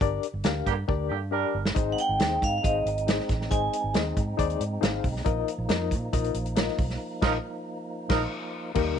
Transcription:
0.01 fingered electric bass G1, reed electric piano D4 G4 A#4 D5, kick, closed hi-hat
0.23 closed hi-hat
0.34 fingered electric bass G1
0.44 fingered electric bass D2, reed electric piano D4 G4 A#4 F5, snare, closed hi-hat
0.66 fingered electric bass G2, horn section D3 A#3 G4, kick, closed hi-hat
0.88 fingered electric bass D2, reed electric piano D4 G4 A#4 D5, kick
1.09 fingered electric bass G2, horn section D3 A#3 G4
1.31 horn section G3 D4 A#4, reed electric piano D4 G4 A#4 D5
1.55 fingered electric bass G1
1.65 snare
1.75 fingered electric bass G#1, tonewheel organ G#3 C4 D#4, reed electric piano D#4 G#4 C5 D#5, kick, closed hi-hat
1.92 vibraphone F#5
1.98 vibraphone G5, closed hi-hat
2.09 fingered electric bass G#1
2.19 fingered electric bass D#2, reed electric piano D#4 G#4 C5 D#5, snare, closed hi-hat
2.42 fingered electric bass G#2, vibraphone F5, kick, closed hi-hat
2.58 vibraphone F5
2.63 fingered electric bass G#1, reed electric piano D#4 G#4 C5 D#5, vibraphone D#5, kick, closed hi-hat
2.86 fingered electric bass G#1, closed hi-hat
2.98 closed hi-hat
3.07 reed electric piano D#4 G#4 C5 D#5, snare, closed hi-hat
3.19 snare
3.29 fingered electric bass A1, kick, snare, closed hi-hat
3.41 snare
3.50 fingered electric bass G#1, reed electric piano D#4 G#4 C5 D#5, vibraphone G#5, kick, closed hi-hat
3.73 closed hi-hat
3.84 fingered electric bass G#1
3.94 fingered electric bass D#2, reed electric piano D#4 G#4 C5 D#5, snare, closed hi-hat
4.17 fingered electric bass G#2, kick, closed hi-hat
4.37 fingered electric bass D#2, reed electric piano D#4 G#4 C5 D5, kick, closed hi-hat
4.50 closed hi-hat
4.60 fingered electric bass G#2, closed hi-hat
4.81 fingered electric bass G#1, reed electric piano D#4 G#4 C5 F5, snare, closed hi-hat
5.04 fingered electric bass B1, kick, open hi-hat
5.16 snare
5.25 fingered electric bass A#1, tonewheel organ F3 A#3, reed electric piano D#4 F4 A#4 D#5, kick, closed hi-hat
5.48 closed hi-hat
5.58 fingered electric bass A#1
5.69 fingered electric bass F2, reed electric piano D#4 F4 A#4 D#5, snare, closed hi-hat
5.91 fingered electric bass A#2, kick, closed hi-hat
6.13 fingered electric bass A#1, reed electric piano D#4 F4 A#4 D#5, kick, closed hi-hat
6.24 closed hi-hat
6.34 fingered electric bass A#1, closed hi-hat
6.46 closed hi-hat
6.56 reed electric piano D#4 F4 A#4 D#5, snare, closed hi-hat
6.68 snare
6.78 fingered electric bass B1, kick, open hi-hat
6.90 snare
7.22 fingered electric bass A#1, horn section F3 D#4 A#4, reed electric piano D#4 F4 A#4, kick, snare, crash
8.09 fingered electric bass A#1, horn section F3 D#4 A#4, reed electric piano D#4 F4 A#4 D#5, kick, snare, crash
8.75 fingered electric bass D#2, tonewheel organ G3 A#3 D#4, reed electric piano A#3 D#4 G4 A#4, kick, crash

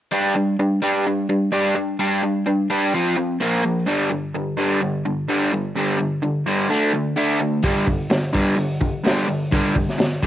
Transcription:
0.11 overdriven electric guitar G3 D4 G4
0.35 overdriven electric guitar G3 D4
0.59 overdriven electric guitar G3 D4
0.82 overdriven electric guitar G3 D4 G4
1.07 overdriven electric guitar G3 D4
1.29 overdriven electric guitar G3 D4
1.52 overdriven electric guitar G3 D4 G4
1.75 overdriven electric guitar G3 D4
2.00 overdriven electric guitar G3 D4 G4
2.23 overdriven electric guitar G3 D4
2.46 overdriven electric guitar G3 D4
2.70 overdriven electric guitar G3 D4 G4
2.94 overdriven electric guitar F3 C4 F4
3.17 overdriven electric guitar F3 C4
3.41 overdriven electric guitar A#2 F3 A#3
3.65 overdriven electric guitar A#2 F3
3.87 overdriven electric guitar G2 D3 G3
4.10 overdriven electric guitar G2 D3
4.35 overdriven electric guitar G2 D3
4.57 overdriven electric guitar G2 D3 G3
4.82 overdriven electric guitar G2 D3
5.05 overdriven electric guitar G2 D3
5.28 overdriven electric guitar G2 D3 G3
5.53 overdriven electric guitar G2 D3
5.76 overdriven electric guitar G2 D3 G3
5.99 overdriven electric guitar G2 D3
6.23 overdriven electric guitar G2 D3
6.47 overdriven electric guitar G2 D3 G3
6.70 overdriven electric guitar D3 A3 D4
6.94 overdriven electric guitar D3 A3
7.16 overdriven electric guitar D3 A3 D4
7.39 overdriven electric guitar D3 A3
7.63 overdriven electric guitar G2 D3 G3, kick, open hi-hat
7.86 overdriven electric guitar G2 D3, kick
8.10 overdriven electric guitar G2 D3, snare, open hi-hat
8.33 overdriven electric guitar G2 D3 G3, kick
8.57 overdriven electric guitar G2 D3, open hi-hat
8.81 overdriven electric guitar G2 D3, kick
9.04 overdriven electric guitar G2 D3 G3, snare, open hi-hat
9.28 overdriven electric guitar G2 D3
9.52 overdriven electric guitar G2 D3 G3, kick, open hi-hat
9.75 overdriven electric guitar G2 D3, kick
9.89 snare
9.98 overdriven electric guitar G2 D3, snare, open hi-hat
10.22 overdriven electric guitar G2 D3 G3, kick

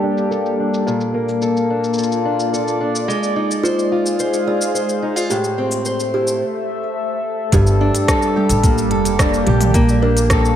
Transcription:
Already playing: steel-string acoustic guitar G2 A#3 A4, ambient pad G3 A#3 G4 A4
0.03 steel-string acoustic guitar D4
0.18 cabasa
0.31 steel-string acoustic guitar A4, cabasa
0.46 cabasa
0.60 steel-string acoustic guitar D4
0.74 cabasa
0.87 steel-string acoustic guitar A#2, ambient pad A#3, cabasa
1.01 cabasa
1.14 steel-string acoustic guitar A#3
1.29 cabasa
1.37 ambient pad F4
1.42 steel-string acoustic guitar A4, cabasa
1.57 cabasa
1.70 steel-string acoustic guitar D4
1.83 ambient pad D5, cabasa
1.94 cabasa
1.98 steel-string acoustic guitar A4, cabasa
2.03 cabasa
2.12 cabasa
2.25 steel-string acoustic guitar D4
2.40 cabasa
2.53 steel-string acoustic guitar A4, cabasa
2.68 cabasa
2.80 steel-string acoustic guitar D4
2.96 cabasa
3.06 ambient pad G#3, steel-string acoustic guitar G#3
3.10 cabasa
3.23 cabasa
3.36 steel-string acoustic guitar D#4
3.51 cabasa
3.58 ambient pad G#4
3.63 kalimba F4, ambient pad C5, steel-string acoustic guitar C5, cabasa
3.79 cabasa
3.91 steel-string acoustic guitar F4, ambient pad F5
4.06 cabasa
4.20 steel-string acoustic guitar C5, cabasa
4.34 cabasa
4.47 steel-string acoustic guitar F4, kalimba D5
4.62 cabasa
4.75 steel-string acoustic guitar C5, cabasa
4.89 cabasa
5.02 steel-string acoustic guitar D#4
5.16 steel-string acoustic guitar F4, cabasa
5.30 steel-string acoustic guitar A2, ambient pad A3, kalimba G4, cabasa
5.44 cabasa
5.58 steel-string acoustic guitar C4
5.72 cabasa
5.85 steel-string acoustic guitar C5, cabasa
6.00 ambient pad A4, cabasa
6.14 steel-string acoustic guitar E4, kalimba G4
6.19 ambient pad E5
6.28 cabasa
7.51 upright bass G1, steel-string acoustic guitar G2, ambient pad G3, kalimba G4, kick, closed hi-hat, cabasa
7.67 cabasa
7.81 steel-string acoustic guitar D4
7.95 closed hi-hat, cabasa
8.08 steel-string acoustic guitar A4, kick, cross-stick, closed hi-hat, cabasa
8.22 ambient pad G4, cabasa
8.36 kalimba G3, steel-string acoustic guitar G4
8.49 upright bass A1, ambient pad A#3, closed hi-hat, cabasa
8.63 steel-string acoustic guitar A#3, kick, closed hi-hat, cabasa
8.78 cabasa
8.91 upright bass F1, steel-string acoustic guitar A4, closed hi-hat
9.05 closed hi-hat, cabasa
9.19 steel-string acoustic guitar D4, kalimba D5, kick, cross-stick, closed hi-hat, cabasa
9.34 cabasa
9.47 upright bass A#1, steel-string acoustic guitar G4, closed hi-hat
9.61 closed hi-hat, mid tom, cabasa
9.74 ambient pad A#3, steel-string acoustic guitar A#3, kick, closed hi-hat, cabasa
9.89 cabasa
10.02 steel-string acoustic guitar D4, kalimba A#4
10.17 closed hi-hat, cabasa
10.30 steel-string acoustic guitar A4, kick, cross-stick, closed hi-hat, cabasa
10.40 ambient pad F4
10.45 cabasa

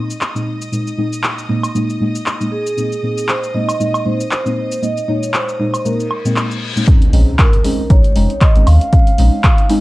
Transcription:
Already playing: synth stab A#2 G#3 A#3 C4 D#4, violin section D#5 D#6
0.10 shaker
0.21 clap, shaker
0.35 synth stab A#2 G#3 A#3 C4 D#4, shaker
0.62 shaker
0.72 synth stab A#2 G#3 A#3 C4 D#4, shaker
0.87 shaker
0.97 synth stab A#2 G#3 A#3 C4 D#4
1.13 shaker
1.24 clap, shaker
1.38 shaker
1.49 synth stab A#2 G#3 A#3 C4 D#4
1.63 high woodblock, shaker
1.74 synth stab A#2 G#3 A#3 C4 D#4, shaker
1.90 shaker
2.00 synth stab A#2 G#3 A#3 C4 D#4
2.15 shaker
2.26 clap, shaker
2.40 synth stab A#2 G#3 A#3 C4 D#4, shaker
2.52 vibraphone G#4
2.67 shaker
2.77 synth stab A#2 G#3 A#3 C4 D#4, shaker
2.92 shaker
3.03 synth stab A#2 G#3 A#3 C4 D#4
3.18 shaker
3.29 vibraphone C5, clap, shaker
3.44 shaker
3.54 synth stab A#2 G#3 A#3 C4 D#4, vibraphone D#5
3.69 high woodblock, shaker
3.79 synth stab A#2 G#3 A#3 C4 D#4, vibraphone D#5, shaker
3.94 high woodblock, shaker
4.05 synth stab A#2 G#3 A#3 C4 D#4, vibraphone C5
4.20 shaker
4.31 vibraphone C5, clap, shaker
4.45 synth stab A#2 G#3 A#3 C4 D#4, shaker
4.72 shaker
4.82 synth stab A#2 G#3 A#3 C4 D#4, vibraphone D#5, shaker
4.97 shaker
5.08 synth stab A#2 G#3 A#3 C4 D#4, vibraphone C#5
5.23 shaker
5.34 vibraphone C5, clap, shaker
5.49 shaker
5.59 synth stab A#2 G#3 A#3 C4 D#4
5.74 high woodblock, shaker
5.85 synth stab A#2 G#3 A#3 C4 D#4, vibraphone A#4, reverse cymbal, shaker
6.00 shaker
6.11 high woodblock
6.25 synth stab A#2 G#3 A#3 C4 D#4, shaker
6.36 clap, shaker
6.51 shaker
6.76 synth stab A#2 G#3 A#3 C4 D#4, shaker
6.87 synth stab G#3 C4 C#4 D#4, kick, closed hi-hat, impact
7.02 closed hi-hat
7.13 sub bass A#1, synth stab G#3 C4 C#4 D#4, open hi-hat
7.39 vibraphone A#4, kick, clap, closed hi-hat, high woodblock
7.53 closed hi-hat
7.64 synth stab G#3 C4 C#4 D#4, open hi-hat
7.90 sub bass A#1, synth stab G#3 C4 C#4 D#4, vibraphone C#5, kick, closed hi-hat
8.04 closed hi-hat
8.15 sub bass F1, synth stab G#3 C4 C#4 D#4, open hi-hat
8.30 closed hi-hat
8.41 vibraphone D#5, kick, clap, closed hi-hat
8.55 sub bass G#1, synth stab G#3 C4 C#4 D#4, closed hi-hat
8.67 sub bass D#2, vibraphone F5, open hi-hat, high woodblock
8.81 closed hi-hat
8.92 synth stab G#3 C4 C#4 D#4, kick, closed hi-hat
9.07 closed hi-hat
9.18 sub bass A#1, synth stab G#3 C4 C#4 D#4, open hi-hat
9.44 kick, clap, closed hi-hat, high woodblock
9.58 closed hi-hat
9.69 synth stab G#3 C4 C#4 D#4, open hi-hat

